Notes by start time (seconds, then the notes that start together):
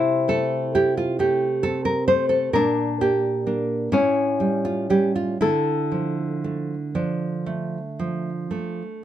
Already playing: C3 E4 C5
0.28 A3 A4
0.75 E4 G4
0.97 F4
1.19 A3 G4
1.63 C4 A4
1.85 A#4
2.08 A3 C5
2.29 A4
2.53 A#2 D4 A#4
3.01 A#3 G4
3.47 A#3 D4
3.92 A2 C#4 E4
4.40 G3
4.65 F4
4.90 G3 C#4 G4
5.16 F4
5.41 D3 E4 A4
5.92 F3
6.44 A3
6.95 F3 D4
7.46 A3
7.99 F3
8.51 A3